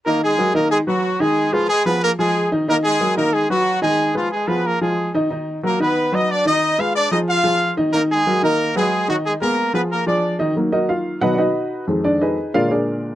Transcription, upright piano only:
X:1
M:4/4
L:1/8
Q:1/4=183
K:Ebm
V:1 name="Upright piano"
[E,Ee]2 [G,GB] [E,Ee]2 [^F,^F=B]2 [^D,^D^d]- | [^D,^D^d] [A,Ac]2 [F,FA]2 [F,FA]2 [E,Ee] | [E,Ee]2 [G,GB] [E,Ee]2 [^F,^F=B]2 [^D,^D^d]- | [^D,^D^d] [A,Ac]2 [F,FA]2 [F,FA]2 [E,Ee] |
[E,Ee]2 [G,GB] [E,Ee]2 [^F,^F=B]2 [^D,^D^d]- | [^D,^D^d] [A,Ac]2 [F,FA]2 [F,FA]2 [E,Ee] | [E,Ee]2 [G,GB] [E,Ee]2 [^F,^F=B]2 [^D,^D^d]- | [^D,^D^d] [A,CA]2 [F,FA]2 [F,FA]2 [E,Ee] |
z [EGBe] [Ff]2 [^F=B^d^f] [^DFB=d^d]3 | z [=D=d] [EAce]2 [FBdf] [DAB_d=d]3 |]
V:2 name="Upright piano" clef=bass
z8 | z8 | z8 | z8 |
z8 | z8 | z8 | z8 |
[E,G,B,]4 [=B,,^D,^F,] z3 | [F,,E,A,]3 z [B,,=D,A,]4 |]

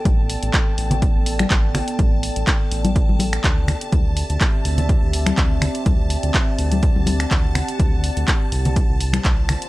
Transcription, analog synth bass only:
X:1
M:4/4
L:1/16
Q:"Swing 16ths" 1/4=124
K:Ddor
V:1 name="Analog synth bass" clef=bass
A,,,3 A,,, z2 A,,,3 A,,,3 A,,,3 z | A,,,3 A,,, z2 A,,,3 A,,,3 D,,3 z | D,,3 D,, z2 D,,3 D,,3 D,,3 z | D,,3 D,, z2 D,,3 D,,3 D,,3 z |
D,,3 D,, z2 C,,3 C,,3 C,,3 z |]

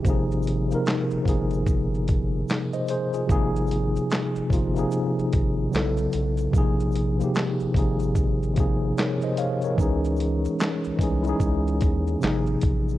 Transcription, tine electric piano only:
X:1
M:4/4
L:1/16
Q:"Swing 16ths" 1/4=74
K:Ab
V:1 name="Tine electric piano"
z12 z [ce] [Ac] [FA]- | [FA] z12 z3 | z12 [Bd] [ce] [df] [Bd]- | [Bd] z12 z3 |]
V:2 name="Tine electric piano"
[C,F,B,EA]2 z [C,F,B,EB]2 z [C,F,B,EA]2 z8 | [C,F,B,EA]4 z2 [C,F,B,EF] [C,F,B,EA]4- [C,F,B,EA] [D,^F,=B,_F=A]3 z | [C,F,B,EA]2 z [C,F,B,EG]2 z [C,F,B,EA]2 z2 [C,F,B,EA]4 z2 | [_F,A,DEA]4 z2 [F,A,DEA] [A,DE_FA]4- [A,DEFA] [C,=F,B,EA]3 z |]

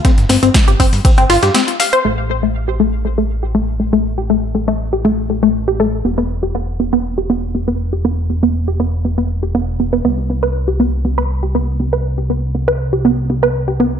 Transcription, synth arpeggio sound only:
X:1
M:4/4
L:1/16
Q:1/4=120
K:C
V:1 name="Synth arpeggio sound"
C z C C z G C z C C F G C z f c | A, z A, A, z G A, z A, A, z G A, z A, A, | z G A, z A, A, z G A, z A, A, z G A, z | B, B, z G B, z B, B, z G B, z B, B, z G |
B, z B, B, z G B, z B, B, z G B, z B, B, | B, z B, B z G B, z B, B z G B, z B, B | z G B, z B, B z G B, z B, B z G B, z |]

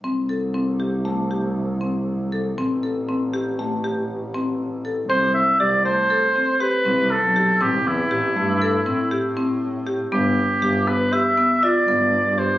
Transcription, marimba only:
X:1
M:5/4
L:1/8
Q:1/4=119
K:C
V:1 name="Marimba"
C A C G A, G2 C2 A | C A C G A, G2 C2 A | C2 G A, A C G C2 G | C2 G A, A C G C2 G |
B,2 G B, G B, F B,2 G |]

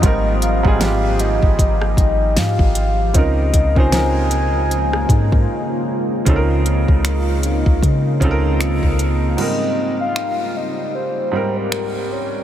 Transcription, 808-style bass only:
X:1
M:4/4
L:1/16
Q:"Swing 16ths" 1/4=77
K:Ab
V:1 name="808-style bass" clef=bass
A,,,3 A,,,4 A,,,3 A,,,2 A,, A,,,3 | D,,2 D,,8 A,,2 z4 | D,,3 D,,4 D,, D,2 D,,3 D,,3 | z16 |]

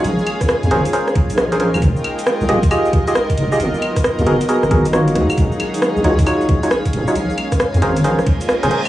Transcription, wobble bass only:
X:1
M:4/4
L:1/16
Q:"Swing 16ths" 1/4=135
K:Bbm
V:1 name="Wobble bass" clef=bass
B,,, z4 F,, A,,, z4 B,,,4 B,,, | F,,, z4 C,, E,,, z6 z F,,, z | A,,, z4 E,, G,,, z2 A,,,4- A,,, E,, z | E,,, z4 B,,, D,, z6 z E,,, z |
B,,, z4 F,, A,,,2 B,,, z4 F,,, z2 |]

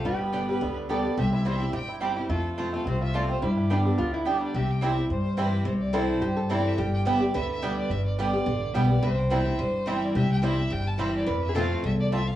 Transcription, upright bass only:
X:1
M:4/4
L:1/8
Q:"Swing" 1/4=214
K:C
V:1 name="Upright bass" clef=bass
G,,,4 D,,4 | C,,4 G,,,4 | F,,4 C,,4 | G,,4 D,,4 |
C,,4 G,,4 | C,,4 G,,4 | G,,,4 D,,4 | G,,,4 A,,,2 B,,,2 |
C,,4 G,,,4 | C,,4 G,,,4 | F,,4 C,,4 |]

